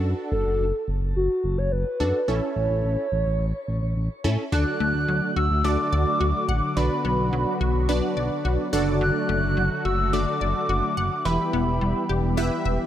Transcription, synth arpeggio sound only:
4.52 D3
4.80 A3
5.08 F#3
5.36 F#4
5.64 A3
5.93 D5
6.21 F#4
6.49 F#5
6.77 D3
7.05 B3
7.33 F#3
7.61 F#4
7.89 B3
8.17 D5
8.45 F#4
8.73 F#5
9.01 D3
9.29 A3
9.57 F#3
9.85 F#4
10.13 A3
10.41 D5
10.69 F#4
10.97 F#5
11.25 E3
11.53 B3
11.81 G3
12.09 G4
12.37 B3
12.65 E5

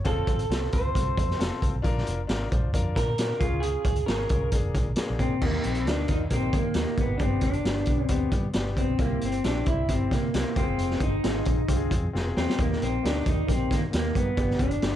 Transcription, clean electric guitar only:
0.06 A4
0.73 C5
2.96 A#4
3.40 F4
3.60 G#4
4.06 A#4
5.20 C4
5.43 A#3
5.64 C4
5.88 D4
6.11 D#4
6.34 C4
6.55 A#3
6.77 A#3
7.01 B3
7.18 D4
7.22 C4
7.43 D4
8.04 C4
8.78 C4
9.02 A#3
9.25 C4
9.45 D4
9.68 E4
9.89 C4
10.12 A#3
10.36 A#3
10.56 C4
11.03 D#4
12.37 C4
12.60 A#3
12.83 C4
13.07 D4
13.29 D#4
13.52 C4
13.74 A#3
13.95 A#3
14.17 B3
14.61 D4

